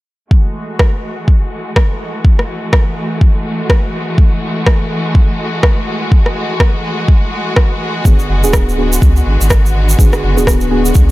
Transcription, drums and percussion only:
0.31 kick
0.79 kick, cross-stick
1.28 kick
1.76 kick, cross-stick
2.25 kick
2.39 cross-stick
2.73 kick, cross-stick
3.21 kick
3.70 kick, cross-stick
4.18 kick
4.66 kick, cross-stick
5.15 kick
5.63 kick, cross-stick
6.12 kick
6.26 cross-stick
6.60 kick, cross-stick
7.08 kick
7.56 kick, cross-stick
8.05 kick, shaker
8.19 shaker
8.44 shaker
8.53 kick, cross-stick, shaker
8.69 shaker
8.93 shaker
9.02 kick, shaker
9.16 shaker
9.41 shaker
9.50 kick, cross-stick, shaker
9.66 shaker
9.89 shaker
9.99 kick, shaker
10.13 cross-stick, shaker
10.38 shaker
10.47 kick, cross-stick, shaker
10.61 shaker
10.85 shaker
10.95 kick, shaker

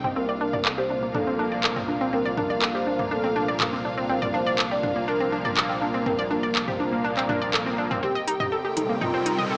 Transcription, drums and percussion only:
0.04 mid tom
0.53 mid tom
0.65 clap
1.14 mid tom
1.64 clap
1.76 mid tom
2.37 mid tom
2.62 clap
2.99 mid tom
3.60 clap, mid tom
4.22 mid tom
4.59 clap
4.83 mid tom
5.45 mid tom
5.57 clap
6.06 mid tom
6.55 clap
6.68 mid tom
7.17 clap
7.29 mid tom
7.54 clap
7.91 mid tom
8.03 mid tom
8.28 closed hi-hat
8.40 mid tom
8.77 closed hi-hat, mid tom
9.01 mid tom
9.26 closed hi-hat
9.39 mid tom

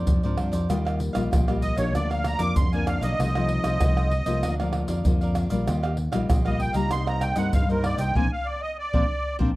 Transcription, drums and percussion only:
0.07 pandeiro, shaker, surdo
0.23 pandeiro, shaker
0.38 pandeiro, tamborim
0.53 pandeiro, shaker, surdo
0.70 pandeiro, tamborim, shaker, surdo
0.86 pandeiro, tamborim, shaker
1.00 pandeiro, shaker
1.15 pandeiro, tamborim, shaker, surdo
1.33 pandeiro, tamborim, shaker, surdo
1.48 pandeiro, tamborim, shaker
1.62 pandeiro, shaker, surdo
1.78 pandeiro, shaker, surdo
1.95 pandeiro, tamborim, shaker, surdo
2.11 pandeiro, tamborim, shaker
2.24 pandeiro, tamborim, shaker
2.39 pandeiro, shaker, surdo
2.56 pandeiro, shaker, surdo
2.73 pandeiro, shaker
2.87 pandeiro, tamborim, shaker
3.03 pandeiro, shaker, surdo
3.20 pandeiro, tamborim, shaker, surdo
3.35 pandeiro, tamborim, shaker
3.49 pandeiro
3.64 pandeiro, tamborim, shaker, surdo
3.81 pandeiro, tamborim, shaker, surdo
3.97 pandeiro, tamborim, shaker
4.11 pandeiro
4.26 pandeiro, shaker, surdo
4.43 pandeiro, tamborim, shaker, surdo
4.60 pandeiro, tamborim, shaker
4.73 pandeiro, tamborim
4.88 pandeiro, shaker, surdo
5.05 pandeiro, shaker, surdo
5.21 pandeiro, shaker
5.35 pandeiro, tamborim, shaker
5.50 pandeiro, shaker, surdo
5.67 pandeiro, tamborim, shaker, surdo
5.83 pandeiro, tamborim, shaker
5.97 pandeiro
6.13 pandeiro, tamborim, shaker, surdo
6.30 pandeiro, tamborim, shaker, surdo
6.46 pandeiro, tamborim, shaker
6.60 pandeiro, surdo
6.74 pandeiro, shaker, surdo
6.91 pandeiro, tamborim, shaker, surdo
7.07 pandeiro, tamborim, shaker
7.21 pandeiro, tamborim, shaker
7.36 pandeiro, shaker, surdo
7.53 pandeiro, shaker, surdo
7.70 pandeiro, shaker
7.84 pandeiro, tamborim
7.98 pandeiro, shaker, surdo
8.15 surdo
8.94 surdo
9.40 surdo

